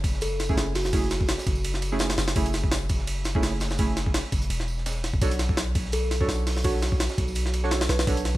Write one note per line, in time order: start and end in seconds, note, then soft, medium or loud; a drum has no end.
0.00 0.56 F#1 loud
0.00 kick loud
0.04 ride medium
0.04 tambourine medium
0.14 snare medium
0.21 0.43 A4 medium
0.21 ride medium
0.21 tambourine medium
0.40 snare soft
0.40 ride medium
0.40 tambourine medium
0.49 0.66 A3 loud
0.49 0.66 C#4 medium
0.49 0.66 E4 medium
0.49 0.66 G#4 loud
0.49 kick medium
0.57 1.37 F#1 loud
0.57 snare loud
0.57 open hi-hat medium
0.57 tambourine medium
0.75 0.81 F#4 medium
0.75 snare medium
0.75 open hi-hat medium
0.75 ride medium
0.85 0.90 F#4 medium
0.85 snare medium
0.93 1.04 A3 medium
0.93 1.04 C#4 medium
0.93 1.04 E4 medium
0.93 1.04 G#4 loud
0.93 kick loud
0.93 ride medium
0.93 tambourine medium
1.10 snare loud
1.10 snare medium
1.10 ride medium
1.10 tambourine medium
1.21 kick loud
1.28 snare loud
1.28 ride medium
1.28 tambourine medium
1.38 snare loud
1.38 tambourine medium
1.47 2.17 F#1 medium
1.47 kick loud
1.47 ride medium
1.55 tambourine medium
1.64 ride medium
1.64 tambourine medium
1.74 snare soft
1.82 ride medium
1.82 tambourine medium
1.92 2.08 A3 loud
1.92 2.08 C#4 medium
1.92 2.08 E4 medium
1.92 2.08 G#4 loud
1.92 snare soft
1.99 snare loud
1.99 open hi-hat medium
1.99 tambourine medium
2.09 snare medium
2.09 snare loud
2.09 open hi-hat medium
2.17 2.34 F#1 medium
2.17 snare loud
2.17 open hi-hat medium
2.17 tambourine medium
2.28 snare loud
2.28 open hi-hat medium
2.35 3.42 F#1 loud
2.35 2.47 A3 medium
2.35 2.47 C#4 medium
2.35 2.47 E4 medium
2.35 2.47 G#4 loud
2.35 kick loud
2.35 ride medium
2.35 tambourine medium
2.46 closed hi-hat soft
2.46 ride soft
2.53 snare medium
2.53 ride medium
2.53 tambourine medium
2.64 kick loud
2.71 snare loud
2.71 open hi-hat medium
2.71 tambourine medium
2.89 kick loud
2.89 ride medium
2.89 tambourine medium
2.98 snare medium
3.07 ride medium
3.07 tambourine medium
3.24 snare medium
3.24 ride medium
3.24 tambourine medium
3.35 3.51 A3 loud
3.35 3.51 C#4 medium
3.35 3.51 E4 medium
3.35 3.51 G#4 loud
3.35 kick loud
3.43 4.23 F#1 loud
3.43 snare loud
3.43 ride medium
3.43 tambourine medium
3.60 snare loud
3.60 snare medium
3.60 ride medium
3.60 tambourine medium
3.70 snare medium
3.70 snare loud
3.70 tambourine medium
3.78 3.90 A3 medium
3.78 3.90 C#4 medium
3.78 3.90 E4 medium
3.78 3.90 G#4 loud
3.78 kick loud
3.78 ride medium
3.78 tambourine medium
3.97 snare medium
3.97 ride medium
3.97 tambourine medium
4.06 kick loud
4.14 snare loud
4.14 ride medium
4.14 tambourine medium
4.32 4.49 F#1 medium
4.32 kick loud
4.32 ride medium
4.32 tambourine medium
4.42 closed hi-hat soft
4.50 5.12 E1 medium
4.50 ride medium
4.50 tambourine medium
4.60 snare soft
4.68 tambourine medium
4.78 snare soft
4.86 snare loud
4.86 ride medium
4.86 tambourine medium
4.96 snare medium
5.04 snare medium
5.04 ride medium
5.04 tambourine medium
5.13 5.21 E1 medium
5.13 kick medium
5.21 6.27 B1 loud
5.21 5.33 D4 medium
5.21 5.33 F#4 medium
5.21 5.33 A4 medium
5.21 5.33 C#5 loud
5.21 kick loud
5.21 ride medium
5.21 tambourine medium
5.31 closed hi-hat soft
5.31 ride soft
5.39 snare medium
5.39 ride medium
5.39 tambourine medium
5.49 kick loud
5.57 snare loud
5.57 open hi-hat medium
5.57 tambourine loud
5.75 kick loud
5.75 ride medium
5.75 tambourine medium
5.85 snare medium
5.92 6.15 A4 medium
5.92 ride medium
5.92 tambourine loud
6.11 snare soft
6.11 ride medium
6.11 tambourine medium
6.21 6.37 D4 loud
6.21 6.37 F#4 medium
6.21 6.37 A4 medium
6.21 6.37 C#5 loud
6.21 kick medium
6.28 7.08 B1 loud
6.28 snare loud
6.28 open hi-hat medium
6.28 tambourine medium
6.47 snare medium
6.47 open hi-hat medium
6.47 ride medium
6.57 snare medium
6.64 6.75 D4 medium
6.64 6.75 F#4 medium
6.64 7.15 F#4 loud
6.64 6.75 A4 medium
6.64 6.75 C#5 loud
6.64 kick loud
6.64 ride medium
6.64 tambourine medium
6.82 snare loud
6.82 snare medium
6.82 ride medium
6.82 tambourine medium
6.92 kick loud
7.00 snare loud
7.00 ride medium
7.00 tambourine medium
7.09 snare loud
7.09 tambourine medium
7.18 7.89 B1 medium
7.18 kick loud
7.18 ride medium
7.28 tambourine medium
7.35 ride medium
7.35 tambourine loud
7.45 snare soft
7.54 ride medium
7.54 tambourine medium
7.64 7.80 D4 loud
7.64 7.80 F#4 medium
7.64 7.80 A4 medium
7.64 7.80 C#5 loud
7.64 snare medium
7.71 snare loud
7.71 open hi-hat medium
7.71 tambourine medium
7.81 snare loud
7.81 open hi-hat medium
7.89 8.06 B1 medium
7.89 8.17 B4 medium
7.89 snare loud
7.89 open hi-hat medium
7.89 tambourine medium
7.99 snare loud
7.99 open hi-hat medium
8.07 8.37 B1 loud
8.07 8.18 D4 medium
8.07 8.18 F#4 medium
8.07 8.18 A4 medium
8.07 8.18 C#5 loud
8.07 kick loud
8.07 ride medium
8.07 tambourine medium
8.17 closed hi-hat soft
8.17 ride soft
8.25 snare medium
8.25 ride medium
8.25 tambourine medium